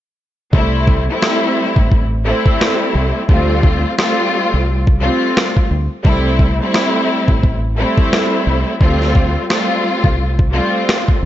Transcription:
0.52 fingered electric bass C2, string section G3 A3 C4 E4, kick
0.87 kick
1.08 string section G3 A3 C4 E4
1.22 cross-stick, snare
1.76 fingered electric bass A1, kick
1.92 kick
2.24 string section G3 A3 C4 E4
2.46 kick
2.61 cross-stick, snare
2.95 fingered electric bass C2
3.27 fingered electric bass D2, string section G3 A3 C4 F4, kick
3.63 kick
3.97 string section G3 A3 C4 F4, cross-stick, snare
4.54 fingered electric bass C2
4.87 kick
5.00 string section G3 A3 C4 F4
5.37 cross-stick, snare
5.57 kick
5.71 fingered electric bass D2
6.04 fingered electric bass C2, string section G3 A3 C4 E4, kick
6.39 kick
6.60 string section G3 A3 C4 E4
6.74 cross-stick, snare
7.28 fingered electric bass A1, kick
7.43 kick
7.76 string section G3 A3 C4 E4
7.98 kick
8.13 cross-stick, snare
8.47 fingered electric bass C2
8.79 fingered electric bass D2, string section G3 A3 C4 F4, kick
9.02 snare
9.15 kick
9.49 string section G3 A3 C4 F4, cross-stick, snare
10.04 fingered electric bass C2, kick
10.39 kick
10.51 string section G3 A3 C4 F4
10.89 cross-stick, snare
11.08 kick

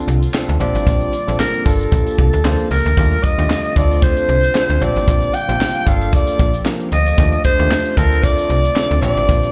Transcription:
Already playing: analog synth pad D3 G3 C4 F4, tine electric piano C4 D4 F4 A4
0.08 fm bass C2, closed hi-hat
0.22 closed hi-hat, tambourine
0.33 tine electric piano C4 D4 F4 A4, snare, clap, tambourine
0.49 fm bass D2, closed hi-hat
0.60 fm bass A#1, analog synth pad G3 A#3 F4, tine electric piano C4 D4 F4 G4, alto saxophone D5, closed hi-hat, tambourine
0.75 fm bass A1, closed hi-hat, tambourine
0.87 fm bass A#1, kick, closed hi-hat, tambourine
1.01 closed hi-hat
1.13 closed hi-hat, tambourine
1.27 fm bass A#1, tine electric piano C4 D4 F4 A4, closed hi-hat, tambourine
1.39 alto saxophone A#4, snare, clap, tambourine
1.54 closed hi-hat
1.65 fm bass G1, analog synth pad F3 G4, tine electric piano A#3 D4 F4 A4, alto saxophone A4, kick, open hi-hat, tambourine
1.81 closed hi-hat, tambourine
1.92 fm bass A#1, kick, closed hi-hat, tambourine
2.07 closed hi-hat, tambourine
2.18 fm bass C2, kick, closed hi-hat
2.33 fm bass D2, closed hi-hat, tambourine
2.44 fm bass D2, tine electric piano A#3 D4 F4 C5, snare, clap, tambourine
2.60 closed hi-hat
2.71 fm bass C#2, alto saxophone A#4, open hi-hat, tambourine
2.86 fm bass D2, closed hi-hat, tambourine
2.96 fm bass D#2, analog synth pad D3 G3 F4, tine electric piano A3 D4 F4 G4, kick, closed hi-hat, tambourine
3.11 closed hi-hat
3.23 alto saxophone D#5, kick, closed hi-hat, tambourine
3.38 fm bass D#2, tine electric piano D3 A3 F4 G4, closed hi-hat, tambourine
3.50 snare, clap, tambourine
3.64 closed hi-hat
3.76 fm bass D2, analog synth pad A3 C4, tine electric piano C4 D4 F4 A4, alto saxophone D5, kick, closed hi-hat, tambourine
3.91 closed hi-hat, tambourine
4.02 alto saxophone C5, kick, closed hi-hat, tambourine
4.17 closed hi-hat, tambourine
4.29 fm bass C2, closed hi-hat
4.43 closed hi-hat, tambourine
4.54 tine electric piano C4 D4 F4 A4, snare, clap, tambourine
4.70 fm bass D2, closed hi-hat
4.81 fm bass A#1, analog synth pad G3 A#3, tine electric piano C4 D4 F4 G4, alto saxophone D5, closed hi-hat, tambourine
4.96 fm bass A1, closed hi-hat, tambourine
5.08 fm bass A#1, kick, closed hi-hat, tambourine
5.22 closed hi-hat
5.33 alto saxophone G5, closed hi-hat, tambourine
5.48 fm bass A#1, tine electric piano C4 D4 F4 G4, closed hi-hat, tambourine
5.61 snare, clap, tambourine
5.75 closed hi-hat
5.85 fm bass G1, analog synth pad F3 G4 A4, tine electric piano A#3 D4 F4 A4, alto saxophone F5, kick, closed hi-hat, tambourine
6.01 closed hi-hat, tambourine
6.13 alto saxophone D5, kick, closed hi-hat, tambourine
6.27 closed hi-hat, tambourine
6.39 fm bass A#1, kick, closed hi-hat
6.54 closed hi-hat, tambourine
6.64 tine electric piano A#3 D4 F4 A#4, snare, clap, tambourine
6.80 closed hi-hat
6.92 fm bass D2, alto saxophone D#5, closed hi-hat, tambourine
7.06 closed hi-hat, tambourine
7.17 fm bass D#2, tine electric piano A3 D4 F4 G4, analog synth pad A3 D4, kick, closed hi-hat, tambourine
7.32 closed hi-hat
7.44 alto saxophone C5, kick, closed hi-hat, tambourine
7.59 fm bass D#2, tine electric piano A3 D4 F4 G4, closed hi-hat
7.71 snare, clap, tambourine
7.85 closed hi-hat
7.96 fm bass D2, analog synth pad D3 C4 F4, tine electric piano C4 D4 F4 A4, alto saxophone A#4, kick, closed hi-hat, tambourine
8.12 closed hi-hat, tambourine
8.23 alto saxophone D5, kick, closed hi-hat, tambourine
8.38 closed hi-hat, tambourine
8.50 fm bass C2, closed hi-hat
8.64 closed hi-hat, tambourine
8.76 tine electric piano C4 D4 F4 A4, snare, clap, tambourine
8.91 fm bass D2, closed hi-hat
9.01 fm bass A#1, analog synth pad G3 A#3 F4, tine electric piano C4 D4 F4 G4, alto saxophone D5, closed hi-hat, tambourine
9.17 fm bass A1, closed hi-hat
9.29 fm bass A#1, kick, closed hi-hat, tambourine
9.43 closed hi-hat

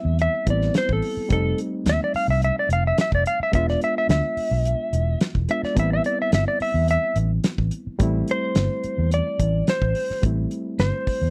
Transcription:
Already playing: reed electric piano G3 B3 C4 E4, electric slide guitar E5
0.05 fingered electric bass E2
0.19 electric slide guitar E5, closed hi-hat
0.46 fingered electric bass A1, reed electric piano G3 B3 C4 E4, electric slide guitar D5, kick, closed hi-hat
0.61 snare
0.74 electric slide guitar C5, snare, closed hi-hat
0.89 fingered electric bass A1, kick
0.93 electric slide guitar A4
1.02 open hi-hat
1.17 muted fingered electric bass stroke
1.29 fingered electric bass F1, reed electric piano G3 A3 C4 D#4, electric slide guitar A4, kick, closed hi-hat
1.58 closed hi-hat
1.86 fingered electric bass D#2, electric slide guitar E5, snare, closed hi-hat
2.04 electric slide guitar D5
2.14 electric slide guitar F5, muted fingered electric bass stroke, open hi-hat
2.28 fingered electric bass C2, electric slide guitar E5
2.42 electric slide guitar E5, closed hi-hat
2.59 electric slide guitar D5
2.69 fingered electric bass F1, electric slide guitar F5, closed hi-hat
2.87 electric slide guitar E5
2.98 electric slide guitar E5, snare, closed hi-hat
3.12 fingered electric bass F1, electric slide guitar D5, kick
3.26 electric slide guitar F5, closed hi-hat
3.40 electric slide guitar E5, muted fingered electric bass stroke
3.52 fingered electric bass E1, reed electric piano G#3 B3 D4, electric slide guitar E5, kick, closed hi-hat
3.56 reed electric piano F4
3.68 electric slide guitar D5, snare
3.81 electric slide guitar E5, closed hi-hat
3.98 electric slide guitar E5
4.09 fingered electric bass D2, electric slide guitar E5, snare, closed hi-hat
4.37 muted fingered electric bass stroke, open hi-hat
4.51 fingered electric bass B1
4.65 closed hi-hat
4.93 fingered electric bass E1, closed hi-hat
5.21 snare, closed hi-hat
5.35 fingered electric bass E1, kick
5.48 reed electric piano G#3 B3 D4 F4, electric slide guitar E5, closed hi-hat
5.63 electric slide guitar D5, muted fingered electric bass stroke, snare
5.75 fingered electric bass A1, reed electric piano G3 B3 C4, kick, closed hi-hat
5.79 reed electric piano E4, electric slide guitar E5
5.93 electric slide guitar E5
6.04 electric slide guitar D5, closed hi-hat
6.22 electric slide guitar E5
6.32 fingered electric bass G1, electric slide guitar E5, snare, closed hi-hat
6.48 electric slide guitar D5
6.60 electric slide guitar E5, muted fingered electric bass stroke, open hi-hat
6.74 fingered electric bass E2
6.88 electric slide guitar E5, closed hi-hat
7.16 fingered electric bass A1, closed hi-hat
7.44 snare, closed hi-hat
7.58 fingered electric bass A1, kick
7.71 closed hi-hat
7.87 muted fingered electric bass stroke
7.99 fingered electric bass A1, reed electric piano G3 A3 C4 E4, kick, closed hi-hat
8.28 electric slide guitar C5, closed hi-hat
8.55 fingered electric bass G1, snare, closed hi-hat
8.84 muted fingered electric bass stroke, closed hi-hat
8.98 fingered electric bass E2
9.11 electric slide guitar D5, closed hi-hat
9.40 fingered electric bass A1, kick, closed hi-hat
9.67 electric slide guitar C5, snare, closed hi-hat
9.82 fingered electric bass A1, kick
9.95 open hi-hat
10.10 muted fingered electric bass stroke, snare
10.22 fingered electric bass A1, reed electric piano G3 A3 C4 E4, kick, closed hi-hat
10.51 closed hi-hat
10.79 fingered electric bass G1, electric slide guitar C5, snare, closed hi-hat
11.07 muted fingered electric bass stroke, kick, open hi-hat
11.21 fingered electric bass E2

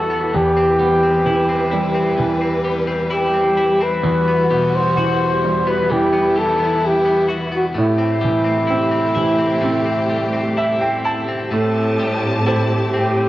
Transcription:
Already playing: grand piano E2 E3 G3, clean electric guitar E2 G3 F#4, string section E3 G3 F#4, flugelhorn A4
0.10 clean electric guitar B3
0.34 clean electric guitar E2, grand piano E2, string section C3 B4, flugelhorn G4
0.57 clean electric guitar C4
0.79 clean electric guitar G3, grand piano B3
1.03 clean electric guitar C4
1.26 grand piano E3, clean electric guitar E4
1.49 clean electric guitar C4
1.71 grand piano G3, clean electric guitar E4
1.95 clean electric guitar C4
2.17 clean electric guitar E2, grand piano E3, string section G3
2.41 clean electric guitar C4
2.64 clean electric guitar G3
2.87 clean electric guitar C4
3.10 clean electric guitar E4, flugelhorn G4
3.34 clean electric guitar C4
3.57 clean electric guitar E4
3.81 clean electric guitar C4, flugelhorn B4
4.03 grand piano E2, clean electric guitar E2, string section E3 G3 F#4
4.28 clean electric guitar B3
4.50 grand piano B2, clean electric guitar G3
4.75 flugelhorn C5
4.97 grand piano E3, clean electric guitar F#4
5.44 grand piano G3
5.67 clean electric guitar B3, flugelhorn B4
5.90 clean electric guitar E2, grand piano E3, string section E4, flugelhorn G4
6.13 clean electric guitar B3
6.36 clean electric guitar G3, flugelhorn A4
6.59 clean electric guitar B3
6.86 flugelhorn G4
7.05 clean electric guitar B3
7.29 clean electric guitar F#4
7.52 clean electric guitar B3, flugelhorn F#4
7.75 clean electric guitar A2, grand piano A2, string section C3 A3 G4, flugelhorn E4
7.98 clean electric guitar C4
8.21 grand piano E3, clean electric guitar G3
8.44 clean electric guitar C4
8.67 grand piano C4, clean electric guitar E4
8.91 clean electric guitar C4
9.15 grand piano E3, clean electric guitar E4
9.39 clean electric guitar C4
9.61 clean electric guitar A2, grand piano C4
9.86 clean electric guitar C4
10.09 clean electric guitar G3
10.33 clean electric guitar C4
10.57 clean electric guitar E4, grand piano E5
10.81 clean electric guitar C4, grand piano G5
11.05 clean electric guitar E4, grand piano A5
11.29 clean electric guitar C4
11.51 clean electric guitar A2, cello section A2, grand piano A3, string section C4 G4 A5
12.00 clean electric guitar G3
12.46 clean electric guitar E4, grand piano G4 A4 C5
12.94 cello section A2, clean electric guitar C4, flugelhorn G4

